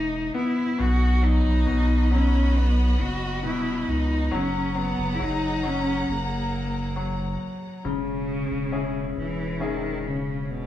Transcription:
Already playing: E1 E3 D#4
0.34 B3 E4
0.77 B1 B2 F#4 D#5 B5
1.22 F#3 D#4
1.45 B1
1.66 B1 B2
2.11 F#3 C#4
2.57 B3
2.99 F#1 F#4
3.43 D#1 B2 E4
3.88 C#2 D#4
4.31 F#1 F#3 C#4 G#4 F#5 A#5
4.75 F#3 B3
4.98 F#1
5.15 E4
5.19 F#1 F#3 D#4
5.63 F#3 C#4
6.08 F#1 A#3
6.96 F#3
7.84 E1 C#3
8.51 E1
8.72 C#4 E4 G#4
9.17 E1 E3
9.60 D#3 C#4 G#4 E5
10.07 C#3
10.43 C#3
10.51 B2

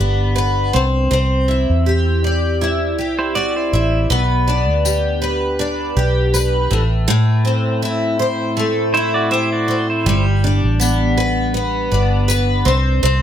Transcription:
Already playing: G3 B3 D4 B4
0.00 G1
0.36 B4
0.73 C2 C4
1.11 C2 C4
1.48 E4
1.70 E2
1.86 G4
2.24 D5
2.61 E4
2.98 C2 G4
3.19 E4 C5
3.35 F#4 D5
3.56 E4 C5
3.73 A1 E4
4.10 B1 B3
4.48 D4
4.68 D2
4.85 G4, tambourine
5.22 B4
5.59 D4
5.97 B1 G4
6.34 B4, tambourine
6.71 A1 A2
7.08 A2
7.45 C4
7.82 E4
8.19 C5
8.57 A3
8.94 E4 C5
9.14 F#4 D5
9.31 G4 C5 E5
9.52 F#4 D5
9.68 C4
9.90 E4 C5
10.06 G1 G3
10.44 D4
10.64 A1
10.80 B3, tambourine
11.18 B4
11.54 B3
11.91 G1 D4
12.28 B4, tambourine
12.65 C2 C4
13.03 C2 C4

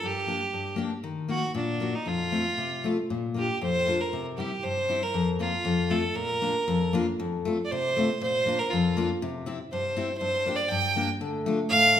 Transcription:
0.03 G2 G4
0.27 A#3 D4 G4
0.53 G2
0.76 A#3 D4 G4
1.04 D#3
1.28 A#3 D#4 F#4
1.54 A#2 D4
1.80 A#3 D#4 F#4
1.95 D#4
2.06 F2 F4
2.32 A3 C4 F4
2.58 C3
2.84 A3 C4 F4
3.10 A#2
3.34 A#3 D4 F4 G4
3.61 F2 C5
3.86 A#3 D4 F4
4.01 A#4
4.13 C3
4.37 G3 C4 E4 G4
4.63 G2 C5
4.89 G3 C4 E4
5.03 A#4
5.14 F2
5.39 A#3 C4 F4
5.65 F2
5.90 A3 C4 F4 A4
6.15 A#2 A#4
6.42 A#3 D4 F4
6.68 F2
6.93 A#3 D4 F4
7.20 F2
7.45 A3 C4 F4
7.65 D5
7.71 C3 C5
7.97 A3 C4 F4
8.22 A#2 C5
8.46 A#3 D4 F4
8.59 A#4
8.70 F2 F4
8.97 A#3 D4 F4
9.22 C3
9.46 C4 E4 G4
9.72 G2 C5
9.97 C4 E4 G4
10.17 G2 C5
10.46 A#3 D4 G4
10.56 D5
10.69 G2 G5
10.96 A#3 D4 G4
11.21 D3 A3
11.46 A3 D4 F4
11.69 A2 F5
11.96 A3

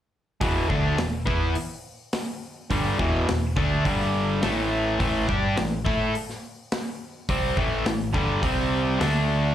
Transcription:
0.41 E1 E2 B2 E3, kick, open hi-hat
0.69 D2 D3 A3 D4, kick
0.97 E1 E2 B2, snare, open hi-hat
1.26 E2 E3 B3 E4, kick
1.55 open hi-hat
2.13 snare, open hi-hat
2.70 G1 G2 D3 G3, kick, open hi-hat
2.99 E1 E2 B2 E3, kick
3.27 E1 E2 B2, snare, open hi-hat
3.56 D2 D3 A3 D4, kick
3.84 G1 G2 D3 G3, kick, open hi-hat
4.01 snare
4.42 A1 A2 E3 A3, snare, open hi-hat
4.99 A1 A2 E3 A3, kick, open hi-hat
5.28 G2 G3 D4 G4, kick
5.57 A1 A2 E3, snare, open hi-hat
5.85 A2 A3 E4 A4, kick
6.15 open hi-hat
6.30 snare
6.72 snare, open hi-hat
7.29 C2 C3 G3 C4, kick, open hi-hat
7.57 A1 A2 E3 A3, kick
7.85 A1 A2 E3, snare, open hi-hat
8.13 G1 G2 D3 G3, kick
8.43 C2 C3 G3 C4, kick, open hi-hat
8.99 D2 D3 A3 D4, snare, open hi-hat

